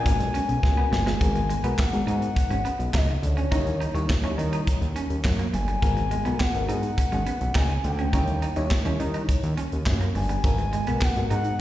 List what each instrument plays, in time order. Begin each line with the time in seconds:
Already playing: horn section D4 B4 D5, soft synth lead G#5
0.05 analog synth bass G#1, fm electric piano G#3 B3 C#4 F#4 A#4, kick, closed hi-hat
0.20 analog synth bass B1, closed hi-hat
0.34 clean electric guitar C#4, closed hi-hat
0.49 analog synth bass B1, closed hi-hat
0.63 analog synth bass C#2, kick, snare
0.77 clean electric guitar B3
0.92 analog synth bass G1, soft synth lead G#5, muted clean electric guitar stroke, snare
1.06 clean electric guitar G#3, snare
1.21 analog synth bass G#1, fm electric piano G#3 B3 F#4 A#4, kick, closed hi-hat
1.35 muted clean electric guitar stroke, closed hi-hat
1.49 clean electric guitar G#3, closed hi-hat
1.64 analog synth bass B1, fm electric piano G#3 B3 F#4 A#4, clean electric guitar B3, closed hi-hat
1.78 soft synth lead F#5, kick, snare, clap
1.93 analog synth bass G#1, fm electric piano G#3 B3 F#4 A#4, closed hi-hat
2.07 analog synth bass G#2, clean electric guitar D#4, soft synth lead F#5, closed hi-hat
2.22 closed hi-hat
2.36 muted clean electric guitar stroke, kick, closed hi-hat
2.50 analog synth bass G#1, clean electric guitar C#4, closed hi-hat
2.65 clean electric guitar B3, closed hi-hat
2.79 analog synth bass B1, closed hi-hat
2.94 analog synth bass C#2, clean electric guitar D#4, soft synth lead D#5, kick, snare, clap
3.08 muted clean electric guitar stroke, closed hi-hat
3.22 analog synth bass D2, soft synth lead C#5, closed hi-hat
3.37 clean electric guitar C#4, closed hi-hat
3.51 analog synth bass D#2, fm electric piano G3 D#4 E4 C#5, clean electric guitar D#4, kick, closed hi-hat
3.67 closed hi-hat
3.80 clean electric guitar D#4, closed hi-hat
3.94 analog synth bass D#2, fm electric piano G3 D#4 E4 C#5, muted clean electric guitar stroke, closed hi-hat
4.10 kick, snare, clap
4.23 analog synth bass D#2, fm electric piano F#3 D#4 E4 C#5, clean electric guitar C#4, closed hi-hat
4.30 fm electric piano G3
4.38 analog synth bass D#3, muted clean electric guitar stroke, closed hi-hat
4.53 clean electric guitar D#4, closed hi-hat
4.67 kick, closed hi-hat
4.81 analog synth bass D#2, closed hi-hat
4.96 clean electric guitar C#4, closed hi-hat
5.10 analog synth bass D#2, closed hi-hat
5.24 analog synth bass F#2, kick, snare, clap
5.39 clean electric guitar A#3, closed hi-hat
5.54 analog synth bass G1, soft synth lead G#5, muted clean electric guitar stroke, closed hi-hat
5.68 clean electric guitar G3, closed hi-hat
5.82 analog synth bass G#1, fm electric piano G#3 B3 F#4 A#4, kick, closed hi-hat
5.97 muted clean electric guitar stroke, closed hi-hat
6.11 clean electric guitar G#3, closed hi-hat
6.25 analog synth bass B1, fm electric piano G#3 B3 F#4 A#4, clean electric guitar B3, closed hi-hat
6.39 soft synth lead F#5, kick, snare, clap
6.54 analog synth bass G#1, fm electric piano G#3 B3 F#4 A#4, closed hi-hat
6.68 analog synth bass G#2, clean electric guitar D#4, soft synth lead F#5, closed hi-hat
6.83 closed hi-hat
6.98 muted clean electric guitar stroke, kick, closed hi-hat
7.12 analog synth bass G#1, clean electric guitar C#4, closed hi-hat
7.27 clean electric guitar B3, closed hi-hat
7.41 analog synth bass B1, closed hi-hat
7.54 analog synth bass C#2, clean electric guitar D#4, soft synth lead G#5, kick, snare, clap
7.70 muted clean electric guitar stroke, closed hi-hat
7.84 analog synth bass D2, soft synth lead G5, closed hi-hat
7.99 clean electric guitar C#4, closed hi-hat
8.13 analog synth bass D#2, fm electric piano G3 D#4 E4 C#5, clean electric guitar D#4, kick, closed hi-hat
8.28 closed hi-hat
8.42 clean electric guitar D#4, closed hi-hat
8.56 analog synth bass D#2, fm electric piano G3 D#4 E4 C#5, muted clean electric guitar stroke, closed hi-hat
8.71 kick, snare, clap
8.85 analog synth bass D#2, fm electric piano G3 D#4 E4 C#5, clean electric guitar C#4, closed hi-hat
9.00 analog synth bass D#3, muted clean electric guitar stroke, closed hi-hat
9.14 clean electric guitar D#4, closed hi-hat
9.29 kick, closed hi-hat
9.43 analog synth bass D#2, closed hi-hat
9.57 clean electric guitar C#4, closed hi-hat
9.72 analog synth bass D#2, closed hi-hat
9.86 analog synth bass F#2, kick, snare, clap
10.01 clean electric guitar A#3, closed hi-hat
10.15 analog synth bass G1, soft synth lead G#5, muted clean electric guitar stroke, open hi-hat
10.29 clean electric guitar G3, closed hi-hat
10.44 analog synth bass G#1, fm electric piano G#3 B3 F#4 A#4, kick, closed hi-hat
10.58 muted clean electric guitar stroke, closed hi-hat
10.73 clean electric guitar G#3, closed hi-hat
10.87 analog synth bass B1, fm electric piano G#3 B3 F#4 A#4, clean electric guitar B3, closed hi-hat
11.01 soft synth lead F#5, kick, snare, clap
11.15 analog synth bass G#1, fm electric piano G#3 B3 F#4 A#4, closed hi-hat
11.30 analog synth bass G#2, clean electric guitar D#4, soft synth lead F#5, closed hi-hat
11.45 closed hi-hat